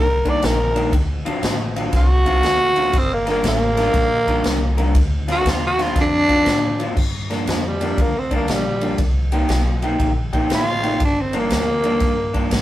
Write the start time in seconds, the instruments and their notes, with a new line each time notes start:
Already playing: upright bass C2, tenor saxophone A#4
0.25 clean electric guitar D#3 G3 A#3 D4, tenor saxophone D5, muted upright bass stroke, kick, ride
0.42 upright bass A#1, tenor saxophone A#4, snare, ride
0.74 clean electric guitar D#3 G3 A#3 D4, ride
0.93 upright bass D2, kick, ride
1.25 clean electric guitar D3 F#3 C4 F4, muted upright bass stroke, ride
1.43 upright bass A1, snare, ride
1.76 clean electric guitar D3 F#3 C4 F4, ride
1.93 upright bass C2, tenor saxophone F#4, kick, snare, ride
2.26 clean electric guitar D3 F#3 C4 F4, kick, ride
2.43 upright bass D2, snare, ride
2.76 clean electric guitar D3 F#3 C4 F4, ride
2.93 upright bass G1, kick, ride
2.98 tenor saxophone C4
3.13 tenor saxophone A#3
3.26 clean electric guitar G3 D4 F4 A#4, snare, ride
3.31 tenor saxophone A#3
3.43 upright bass A1, snare, ride
3.47 tenor saxophone A#3
3.77 clean electric guitar G3 D4 F4 A#4, snare, ride
3.94 upright bass A#1, kick, snare, ride
4.27 clean electric guitar G3 D4 F4 A#4, kick, ride
4.44 upright bass C2, snare, ride
4.77 clean electric guitar G3 D4 F4 A#4, ride
4.95 upright bass D2, kick, ride
5.28 clean electric guitar D3 F#3 C4 F4, tenor saxophone F#4, snare, ride
5.45 upright bass D#2, snare, ride
5.50 tenor saxophone F4
5.67 tenor saxophone F#4
5.78 clean electric guitar D3 F#3 C4 F4, snare, ride
5.83 tenor saxophone F4
5.96 upright bass F2, kick, snare, ride
6.01 tenor saxophone D4
6.29 clean electric guitar D3 F#3 C4 F4, kick, ride
6.46 upright bass A2, snare, ride
6.79 clean electric guitar D3 F#3 C4 F4, ride
6.96 upright bass G2, kick, crash
7.30 clean electric guitar G2 F3 A#3 D4, snare, ride
7.47 upright bass F2, tenor saxophone F3, snare, ride
7.67 tenor saxophone G3
7.81 clean electric guitar G2 F3 A#3 D4, ride
7.98 upright bass D2, kick, ride
8.02 tenor saxophone A#3
8.18 tenor saxophone C4
8.31 clean electric guitar G2 F3 A#3 D4, kick, ride
8.35 tenor saxophone A#3
8.48 upright bass A#1, snare, ride
8.52 tenor saxophone G3
8.81 clean electric guitar G2 F3 A#3 D4, ride
8.98 upright bass C2, kick, ride
9.32 clean electric guitar C3 A#3 D#4 G4, ride
9.49 upright bass B1, snare, ride
9.82 clean electric guitar C3 A#3 D#4 G4, ride
9.99 upright bass A#1, kick, ride
10.33 clean electric guitar C3 A#3 D#4 G4, kick, ride
10.50 upright bass A1, snare, ride
10.54 tenor saxophone F4
10.83 clean electric guitar C3 A#3 D#4 G4, ride
11.00 upright bass G1, kick, ride
11.05 tenor saxophone D4
11.21 tenor saxophone C4
11.33 clean electric guitar G2 F3 A#3 D4, ride
11.38 tenor saxophone A#3
11.50 upright bass D2, snare, ride
11.84 clean electric guitar G2 F3 A#3 D4, ride
12.00 upright bass G2, kick, snare, ride
12.34 clean electric guitar G2 F3 A#3 D4, kick, ride
12.51 upright bass A2, snare, ride